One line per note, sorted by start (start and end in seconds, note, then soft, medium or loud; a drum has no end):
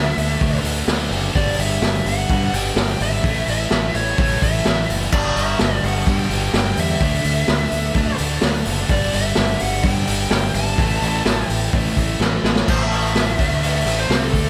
0.00 0.13 D2 medium
0.00 0.63 D3 loud
0.00 0.64 A3 loud
0.00 0.62 D4 loud
0.00 0.61 E5 medium
0.17 0.36 D2 medium
0.17 open hi-hat medium
0.41 0.60 D2 loud
0.41 1.34 D3 medium
0.41 1.34 A3 medium
0.41 1.35 D4 medium
0.41 kick loud
0.41 open hi-hat medium
0.63 0.82 D2 medium
0.63 0.86 D3 medium
0.63 0.87 A3 medium
0.63 0.86 D4 medium
0.63 open hi-hat medium
0.87 1.07 D2 loud
0.87 1.33 D3 medium
0.87 1.34 A3 medium
0.87 1.35 D4 medium
0.87 snare loud
0.87 open hi-hat loud
1.11 1.30 F#1 loud
1.11 open hi-hat medium
1.34 1.54 G1 medium
1.34 2.51 G2 medium
1.34 2.52 D3 loud
1.34 2.52 G3 loud
1.34 1.60 D5 medium
1.34 kick loud
1.34 open hi-hat medium
1.59 1.77 G1 medium
1.59 2.08 E5 loud
1.59 open hi-hat medium
1.82 2.01 G1 loud
1.82 snare loud
1.82 open hi-hat medium
2.05 2.24 G1 medium
2.05 2.54 F#5 loud
2.05 open hi-hat medium
2.29 3.22 G2 medium
2.29 2.48 G2 medium
2.29 3.23 D3 medium
2.29 3.24 G3 medium
2.29 kick loud
2.29 open hi-hat medium
2.52 2.71 G1 medium
2.52 2.74 G2 medium
2.52 2.75 D3 medium
2.52 2.75 G3 loud
2.52 3.02 G5 medium
2.52 open hi-hat medium
2.75 2.95 G1 medium
2.75 3.21 G2 medium
2.75 3.22 D3 medium
2.75 3.23 G3 medium
2.75 snare loud
2.75 open hi-hat medium
3.00 3.19 G#1 medium
3.00 3.45 E5 loud
3.00 open hi-hat medium
3.23 3.42 A1 loud
3.23 4.39 A2 loud
3.23 4.40 E3 loud
3.23 4.39 A3 loud
3.23 kick loud
3.23 open hi-hat medium
3.47 3.66 A1 medium
3.47 3.96 E5 medium
3.47 open hi-hat medium
3.71 3.90 A1 medium
3.71 snare loud
3.71 open hi-hat medium
3.94 4.13 A1 medium
3.94 4.17 C#5 medium
3.94 open hi-hat medium
4.18 4.37 A1 loud
4.18 5.11 A2 medium
4.18 5.12 E3 medium
4.18 5.12 A3 medium
4.18 4.40 C#5 medium
4.18 kick loud
4.18 open hi-hat medium
4.40 4.61 A1 medium
4.40 4.64 A2 medium
4.40 4.64 E3 medium
4.40 4.63 A3 medium
4.40 4.86 E5 medium
4.40 kick medium
4.40 open hi-hat medium
4.65 4.85 A1 loud
4.65 5.11 A2 medium
4.65 5.11 E3 medium
4.65 5.12 A3 medium
4.65 snare loud
4.65 open hi-hat medium
4.90 5.08 F#1 medium
4.90 open hi-hat medium
5.11 5.31 G1 medium
5.11 6.28 G2 loud
5.11 6.29 D3 loud
5.11 6.29 G3 loud
5.11 5.36 D5 medium
5.11 kick loud
5.11 crash loud
5.36 5.55 G1 medium
5.36 5.84 E5 medium
5.36 open hi-hat medium
5.59 5.79 G1 medium
5.59 snare loud
5.59 open hi-hat medium
5.84 6.02 G1 medium
5.84 6.06 F#5 loud
5.84 open hi-hat medium
6.06 6.99 G2 medium
6.06 6.25 G2 medium
6.06 7.00 D3 medium
6.06 7.01 G3 medium
6.06 6.80 G5 loud
6.06 kick loud
6.06 open hi-hat medium
6.29 6.48 G1 medium
6.29 6.52 G2 medium
6.29 6.53 D3 medium
6.29 6.52 G3 medium
6.29 open hi-hat medium
6.53 6.72 G1 loud
6.53 6.99 G2 medium
6.53 6.99 D3 medium
6.53 7.01 G3 loud
6.53 snare loud
6.53 open hi-hat medium
6.77 6.96 E2 medium
6.77 8.16 E5 medium
6.77 open hi-hat medium
7.00 7.20 D2 loud
7.00 8.17 D3 loud
7.00 8.18 A3 loud
7.00 8.17 D4 loud
7.00 kick loud
7.00 open hi-hat medium
7.24 7.43 D2 medium
7.24 open hi-hat medium
7.48 7.67 D2 medium
7.48 snare loud
7.48 open hi-hat medium
7.71 7.91 D2 medium
7.71 open hi-hat medium
7.94 8.14 D2 loud
7.94 8.88 D3 medium
7.94 8.89 A3 medium
7.94 8.90 D4 medium
7.94 kick loud
7.94 open hi-hat medium
8.18 8.38 D2 medium
8.18 8.41 D3 medium
8.18 8.42 A3 medium
8.18 8.41 D4 medium
8.18 open hi-hat medium
8.41 8.61 D2 medium
8.41 8.88 D3 medium
8.41 8.89 A3 medium
8.41 8.90 D4 medium
8.41 snare loud
8.41 open hi-hat medium
8.65 8.85 F#1 medium
8.65 open hi-hat medium
8.89 9.08 G1 medium
8.89 10.06 G2 loud
8.89 10.07 D3 loud
8.89 10.06 G3 loud
8.89 9.15 D5 medium
8.89 kick loud
8.89 open hi-hat medium
9.13 9.32 G1 loud
9.13 9.63 E5 medium
9.13 open hi-hat medium
9.35 9.56 G1 medium
9.35 snare loud
9.35 open hi-hat medium
9.59 9.80 G1 medium
9.59 9.84 F#5 loud
9.59 open hi-hat medium
9.83 10.76 G2 medium
9.83 10.03 G2 loud
9.83 10.77 D3 medium
9.83 10.78 G3 medium
9.83 10.51 G5 loud
9.83 kick loud
9.83 open hi-hat medium
10.07 10.27 G1 medium
10.07 10.29 G2 medium
10.07 10.30 D3 medium
10.07 10.30 G3 medium
10.07 open hi-hat medium
10.30 10.50 G1 loud
10.30 10.76 G2 medium
10.30 10.77 D3 medium
10.30 10.78 G3 medium
10.30 snare loud
10.30 open hi-hat medium
10.54 10.73 G#1 medium
10.54 11.48 A5 loud
10.54 open hi-hat medium
10.77 10.97 A1 loud
10.77 11.95 A2 loud
10.77 11.96 E3 loud
10.77 11.95 A3 loud
10.77 kick loud
10.77 open hi-hat medium
11.02 11.21 A1 medium
11.02 open hi-hat medium
11.25 11.44 A1 loud
11.25 snare loud
11.25 open hi-hat medium
11.48 11.68 A1 medium
11.48 11.93 G5 loud
11.48 open hi-hat medium
11.73 11.92 A1 medium
11.73 12.66 A2 medium
11.73 12.67 E3 medium
11.73 12.67 A3 medium
11.73 kick loud
11.73 open hi-hat medium
11.96 12.16 A1 medium
11.96 12.19 A2 medium
11.96 12.20 E3 medium
11.96 12.19 A3 medium
11.96 kick medium
11.96 open hi-hat medium
12.20 12.39 A1 loud
12.20 12.66 A2 medium
12.20 12.67 E3 medium
12.20 12.67 A3 medium
12.20 snare medium
12.44 12.63 A1 medium
12.44 snare loud
12.56 snare loud
12.68 13.35 A1 medium
12.68 13.38 A2 medium
12.68 13.39 E3 loud
12.68 13.38 A3 loud
12.68 12.80 C5 medium
12.68 kick loud
12.68 crash loud
12.83 13.73 E5 loud
12.91 open hi-hat medium
13.15 snare loud
13.15 open hi-hat medium
13.39 13.83 D2 medium
13.39 13.85 D3 loud
13.39 13.86 A3 medium
13.39 13.86 D4 loud
13.39 kick loud
13.39 open hi-hat medium
13.63 open hi-hat medium
13.75 13.98 E5 medium
13.86 14.08 A1 medium
13.86 14.08 A2 medium
13.86 14.09 E3 loud
13.86 14.09 A3 loud
13.86 open hi-hat medium
14.00 14.22 C5 medium
14.09 14.32 C2 loud
14.09 14.31 C3 medium
14.09 14.32 G3 medium
14.09 14.32 C4 loud
14.09 snare loud
14.09 open hi-hat medium
14.24 14.46 A4 medium
14.32 14.50 D2 loud
14.32 14.50 D3 medium
14.32 14.50 A3 loud
14.32 14.50 D4 loud
14.32 kick medium
14.32 open hi-hat medium